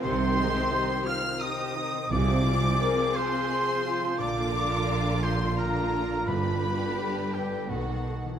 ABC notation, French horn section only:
X:1
M:3/4
L:1/8
Q:1/4=86
K:Cm
V:1 name="French horn section"
G A, G F G E | F2 B A A F- | F2 D F3- | F2 G =B ^D z |]